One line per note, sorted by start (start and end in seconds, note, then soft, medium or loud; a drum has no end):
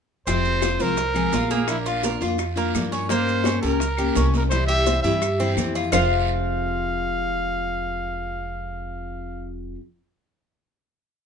0.27 0.76 F1 medium
0.27 0.79 C3 medium
0.27 0.81 F3 medium
0.27 0.79 G#3 medium
0.27 0.61 C4 medium
0.27 0.79 C4 medium
0.27 0.79 F4 medium
0.27 0.83 C5 loud
0.27 high bongo medium
0.27 high conga soft
0.27 long guiro medium
0.27 maracas medium
0.45 high bongo soft
0.45 high conga soft
0.45 maracas soft
0.62 0.80 F4 medium
0.62 high bongo medium
0.62 high conga medium
0.62 short guiro medium
0.62 claves medium
0.62 maracas medium
0.79 1.29 C2 medium
0.79 0.96 F3 medium
0.79 0.96 G#3 medium
0.79 0.97 C4 medium
0.79 0.97 F4 medium
0.79 1.53 A#4 medium
0.79 1.14 C5 medium
0.79 high conga soft
0.79 short guiro medium
0.79 maracas soft
0.97 muted steel-string acoustic guitar stroke medium
0.97 high bongo medium
0.97 high conga soft
0.97 long guiro medium
0.97 maracas medium
1.14 1.31 F3 medium
1.14 1.32 G#3 medium
1.14 1.32 C4 medium
1.14 1.32 F4 medium
1.14 1.33 G#4 medium
1.14 high bongo soft
1.14 high conga soft
1.14 claves medium
1.14 maracas soft
1.33 2.15 A#1 medium
1.33 1.66 F3 soft
1.33 1.67 G#3 medium
1.33 1.68 C4 soft
1.33 1.51 F4 medium
1.33 1.68 F4 medium
1.33 high bongo soft
1.33 low bongo medium
1.33 high conga medium
1.33 short guiro medium
1.33 maracas medium
1.50 1.85 A#3 medium
1.50 1.69 G#4 medium
1.50 high bongo soft
1.50 high conga medium
1.50 short guiro medium
1.50 maracas soft
1.67 2.20 F3 medium
1.67 2.22 A#3 medium
1.67 2.20 D4 medium
1.67 1.77 E4 medium
1.67 2.19 F4 medium
1.67 high bongo medium
1.67 high conga soft
1.67 long guiro medium
1.67 claves medium
1.67 maracas medium
1.86 2.03 F4 medium
1.86 2.19 F4 medium
1.86 high bongo soft
1.86 high conga soft
1.86 maracas soft
2.03 2.21 A#4 medium
2.03 high bongo medium
2.03 high conga medium
2.03 short guiro medium
2.03 maracas medium
2.21 2.70 F2 medium
2.21 2.37 A#3 medium
2.21 2.37 D4 medium
2.21 2.37 F4 medium
2.21 2.56 F4 medium
2.21 short guiro medium
2.21 maracas soft
2.38 muted steel-string acoustic guitar stroke medium
2.38 high bongo medium
2.38 high conga soft
2.38 long guiro medium
2.38 claves medium
2.38 maracas medium
2.56 2.91 A#3 medium
2.56 2.74 A#3 medium
2.56 2.73 D4 medium
2.56 2.73 F4 medium
2.56 high bongo soft
2.56 high conga soft
2.56 maracas soft
2.75 3.57 G2 medium
2.75 3.09 F3 soft
2.75 3.09 A#3 soft
2.75 3.10 D4 medium
2.75 3.10 F4 medium
2.75 high bongo soft
2.75 low bongo medium
2.75 high conga medium
2.75 short guiro medium
2.75 claves medium
2.75 maracas medium
2.92 3.09 C#4 medium
2.92 high bongo soft
2.92 short guiro medium
2.92 maracas soft
3.09 3.67 G3 medium
3.09 3.44 A#3 medium
3.09 3.62 A#3 medium
3.09 3.62 C#4 medium
3.09 3.62 G4 medium
3.09 3.59 C5 loud
3.09 high bongo medium
3.09 high conga soft
3.09 long guiro medium
3.09 maracas medium
3.27 high bongo soft
3.27 high conga soft
3.27 maracas soft
3.44 3.62 C#4 medium
3.44 high bongo medium
3.44 high conga loud
3.44 short guiro medium
3.44 claves medium
3.44 maracas medium
3.62 4.12 C#2 medium
3.62 3.80 A#3 medium
3.62 3.80 C#4 medium
3.62 3.80 G4 medium
3.62 4.29 A#4 medium
3.62 3.97 A#4 medium
3.62 high conga soft
3.62 short guiro medium
3.62 maracas soft
3.80 muted steel-string acoustic guitar stroke medium
3.80 high bongo medium
3.80 high conga soft
3.80 long guiro medium
3.80 maracas medium
3.97 4.15 A#3 medium
3.97 4.15 C#4 medium
3.97 4.15 G4 medium
3.97 high bongo soft
3.97 high conga soft
3.97 claves medium
3.97 maracas soft
4.15 4.99 C2 medium
4.15 4.50 G3 soft
4.15 4.51 A#3 medium
4.15 4.33 C#4 medium
4.15 4.51 C#4 medium
4.15 4.51 G4 medium
4.15 high bongo soft
4.15 low bongo medium
4.15 high conga medium
4.15 short guiro medium
4.15 maracas medium
4.34 high bongo soft
4.34 high conga medium
4.34 short guiro medium
4.34 maracas soft
4.38 4.43 A#4 medium
4.49 5.03 C3 medium
4.49 5.03 E3 medium
4.49 5.03 G3 medium
4.49 5.03 C4 medium
4.49 5.03 E4 medium
4.49 4.67 C5 loud
4.49 high bongo medium
4.49 high conga soft
4.49 long guiro medium
4.49 claves medium
4.49 maracas medium
4.67 4.86 G4 medium
4.67 5.01 E5 loud
4.67 high bongo soft
4.67 high conga soft
4.67 maracas soft
4.86 5.04 C5 medium
4.86 high bongo medium
4.86 high conga medium
4.86 short guiro medium
4.86 maracas medium
5.02 5.53 G2 medium
5.02 5.21 E3 medium
5.02 5.21 G3 medium
5.02 5.21 C4 medium
5.02 5.21 E4 medium
5.02 5.38 G4 medium
5.02 5.53 E5 medium
5.02 high conga soft
5.02 short guiro medium
5.02 maracas soft
5.22 muted steel-string acoustic guitar stroke medium
5.22 high bongo medium
5.22 high conga soft
5.22 long guiro medium
5.22 claves medium
5.22 maracas medium
5.39 5.56 E3 medium
5.39 5.57 G3 medium
5.39 5.57 C4 medium
5.39 5.74 C4 medium
5.39 5.56 E4 medium
5.39 high bongo soft
5.39 high conga soft
5.39 maracas soft
5.57 5.88 F2 medium
5.57 5.92 E3 soft
5.57 5.92 G3 medium
5.57 5.92 C4 medium
5.57 5.93 E4 soft
5.57 high bongo soft
5.57 low bongo medium
5.57 high conga medium
5.57 short guiro medium
5.57 claves medium
5.57 maracas medium
5.75 5.91 F4 medium
5.75 high bongo soft
5.75 short guiro medium
5.75 maracas soft
5.92 9.75 F1 medium
5.92 9.78 F2 medium
5.92 9.79 C3 medium
5.92 9.80 F3 medium
5.92 9.80 G#3 medium
5.92 9.80 C4 medium
5.92 9.74 F4 medium
5.92 9.81 F4 medium
5.92 9.75 C5 medium
5.92 9.51 F5 medium
5.92 9.75 F5 medium
5.92 low bongo loud
5.92 low conga loud
5.92 long guiro medium
5.92 claves loud
5.92 maracas loud